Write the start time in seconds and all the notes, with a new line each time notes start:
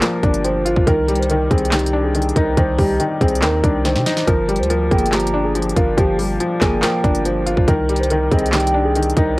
Already playing: F3 G3 A#3 D4 F4
0.02 F3 A#4, snare, clap, closed hi-hat
0.23 G1 D4, kick, closed hi-hat
0.34 closed hi-hat
0.44 F3 C5, closed hi-hat
0.65 F4, closed hi-hat
0.76 G1, kick
0.87 C2 D#3 A#4, kick, closed hi-hat
1.08 G3, closed hi-hat
1.15 C5, closed hi-hat
1.23 closed hi-hat
1.30 D#3 A#4, closed hi-hat
1.51 C2 C4 G#4, kick, closed hi-hat
1.58 closed hi-hat
1.65 closed hi-hat
1.72 D#3 G4, snare, clap, closed hi-hat
1.79 closed hi-hat
1.86 closed hi-hat
1.93 D4
2.04 G#4
2.15 D#3, closed hi-hat
2.22 closed hi-hat
2.29 closed hi-hat
2.36 C2 D#4 A#4, kick, closed hi-hat
2.57 C2 D#3 C5, kick, closed hi-hat
2.78 C2 G3 G4, kick, open hi-hat
3.00 D#3, closed hi-hat
3.21 C2 C4 G#4, kick, closed hi-hat
3.28 closed hi-hat
3.35 closed hi-hat
3.42 D#2 D#3 A#4, snare, clap, closed hi-hat
3.64 C2 D4, kick, closed hi-hat
3.85 D#3 C5, snare, closed hi-hat
3.96 C3, snare
4.06 D#4, snare, closed hi-hat
4.17 snare
4.27 G1 F3 A#4, kick, closed hi-hat
4.48 G3, closed hi-hat
4.56 D2 C5, closed hi-hat
4.63 closed hi-hat
4.70 F3 A#4, closed hi-hat
4.91 G1 A#3 G#4 G5, kick, closed hi-hat
4.98 closed hi-hat
5.06 closed hi-hat
5.12 F3 G4 A#5, snare, clap, closed hi-hat
5.20 closed hi-hat
5.27 closed hi-hat
5.34 D4
5.44 G#4
5.55 F3, closed hi-hat
5.62 closed hi-hat
5.69 closed hi-hat
5.76 G1 F4 A#4, kick, closed hi-hat
5.97 G1 F3 G4, kick, closed hi-hat
6.18 G3 G4, open hi-hat
6.40 F3, closed hi-hat
6.61 G1 A#3 G#4 G#5, kick, snare, clap, closed hi-hat
6.82 F3 A#4 G5, snare, clap, closed hi-hat
7.04 G1 D4, kick, closed hi-hat
7.15 closed hi-hat
7.25 F3 C5, closed hi-hat
7.46 F4, closed hi-hat
7.57 G1, kick
7.68 C2 D#3 A#4, kick, closed hi-hat
7.89 G3, closed hi-hat
7.96 C5, closed hi-hat
8.03 closed hi-hat
8.10 D#3 A#4, closed hi-hat
8.32 C2 C4 G#4 D#5, kick, closed hi-hat
8.39 closed hi-hat
8.46 closed hi-hat
8.53 D#3 G4 G5, snare, clap, closed hi-hat
8.60 closed hi-hat
8.67 closed hi-hat
8.74 D4
8.85 G#4
8.96 D#3, closed hi-hat
9.03 closed hi-hat
9.10 closed hi-hat
9.17 C2 D#4 A#4, kick, closed hi-hat